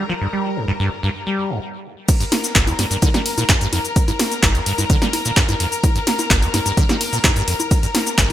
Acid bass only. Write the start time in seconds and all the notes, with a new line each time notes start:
0.09 F3
0.21 G2
0.33 G3
0.56 G2
0.68 G2
0.80 G2
1.03 G2
1.27 G3
1.50 G2
2.20 G2
2.55 G1
2.67 G2
2.79 G2
2.91 G2
3.02 D3
3.14 G3
3.38 A#2
3.49 G2
3.61 G2
3.73 F2
4.08 G2
4.43 G1
4.55 G2
4.66 G2
4.78 G2
4.90 D3
5.02 G3
5.25 A#2
5.37 G2
5.48 G2
5.60 F2
5.95 G2
6.30 G1
6.42 G2
6.54 G2
6.66 G2
6.77 D3
6.89 G3
7.13 A#2
7.24 G2
7.36 G2
7.47 F2
7.83 G2
8.18 G1